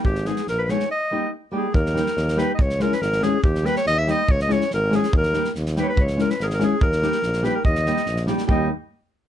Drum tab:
SD |-oooo-oo|--------|-oooooo-|-oooooo-|
BD |o-------|--------|o-------|o-------|

SD |-oooo-o-|-oooo-oo|-oooooo-|-oooooo-|
BD |o-------|o-------|o-------|o-------|

SD |-oooooo-|-ooooooo|--------|
BD |o-------|o-------|o-------|